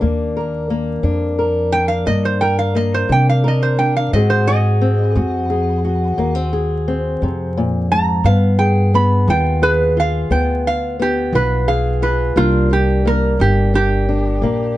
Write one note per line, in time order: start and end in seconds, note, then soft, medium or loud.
0.00 1.02 D#2 medium
0.00 0.63 C3 medium
0.00 0.69 A#3 medium
0.00 1.03 D4 medium
0.37 1.37 A#4 medium
0.70 2.05 A#3 medium
1.03 2.04 F2 medium
1.03 1.66 G3 medium
1.03 1.72 D4 medium
1.39 2.41 A#4 medium
1.72 3.08 D4 medium
1.72 1.88 G5 loud
1.88 2.06 F5 medium
2.06 3.07 G2 medium
2.06 2.69 C3 medium
2.06 2.74 A#3 medium
2.06 2.24 D#5 medium
2.25 2.42 C5 medium
2.41 3.43 A#4 medium
2.41 2.58 G5 loud
2.59 2.76 F5 medium
2.75 4.13 A#3 medium
2.75 2.93 D#5 medium
2.94 3.11 C5 medium
3.09 4.10 C3 medium
3.09 3.72 G3 medium
3.09 3.78 D4 medium
3.09 3.28 G5 medium
3.29 3.45 F5 medium
3.44 4.09 A#4 medium
3.44 3.63 D#5 medium
3.63 3.79 C5 medium
3.79 4.13 D4 medium
3.79 3.96 G5 medium
3.97 4.13 F5 medium
4.13 5.13 G#2 medium
4.13 4.75 G#2 medium
4.13 5.15 G#3 medium
4.13 4.80 C4 medium
4.13 5.15 F#4 medium
4.13 4.48 G#4 medium
4.13 4.30 D#5 medium
4.30 4.47 C5 loud
4.47 5.49 G#4 medium
4.47 6.49 D#5 loud
4.81 6.18 C4 medium
5.15 6.16 F2 medium
5.15 5.78 G#3 medium
5.15 5.83 F#4 medium
5.50 6.52 G#4 medium
5.85 8.21 F#4 medium
6.18 7.18 D#2 medium
6.18 6.80 G#2 medium
6.18 6.35 A#3 medium
6.35 6.87 C4 medium
6.53 8.21 G#4 medium
6.88 8.21 C4 medium
7.22 8.22 F2 medium
7.22 7.57 C3 medium
7.57 7.91 A#2 medium
7.91 8.25 G#2 medium
7.91 8.25 A#5 loud
8.24 9.24 G2 medium
8.24 8.87 G2 medium
8.24 8.93 B3 medium
8.24 8.58 F5 loud
8.59 9.61 G#4 medium
8.59 8.92 G5 medium
8.94 10.29 B3 medium
8.94 9.28 B5 medium
9.27 10.28 D#2 loud
9.27 9.90 G3 medium
9.27 9.96 F4 medium
9.27 9.62 G5 medium
9.62 10.65 G#4 medium
9.62 9.96 B4 loud
9.97 11.33 F4 medium
9.97 10.32 F5 loud
10.30 11.30 D2 medium
10.30 10.93 G2 medium
10.30 10.98 B3 medium
10.30 10.65 G5 medium
10.67 11.00 F5 medium
10.99 12.33 B3 medium
10.99 11.34 G4 loud
11.33 12.33 B1 medium
11.33 11.95 G3 medium
11.33 12.01 F4 medium
11.33 11.68 B4 medium
11.68 12.32 G#4 medium
11.68 12.01 F5 medium
12.02 12.32 F4 medium
12.02 12.36 B4 medium
12.36 13.36 C2 medium
12.36 12.98 C3 medium
12.36 13.39 G3 medium
12.36 13.04 A#3 medium
12.36 12.70 D4 medium
12.36 12.70 F4 loud
12.71 13.40 D4 medium
12.71 13.05 G4 medium
13.05 14.42 A#3 medium
13.05 13.40 A#4 medium
13.39 14.39 G1 loud
13.39 14.01 G3 medium
13.39 13.73 D4 medium
13.39 13.74 G4 medium
13.74 14.08 D4 medium
13.74 14.77 G4 loud
14.09 14.77 D4 medium
14.41 14.77 A#1 medium
14.41 14.77 C3 medium
14.41 14.77 A#3 medium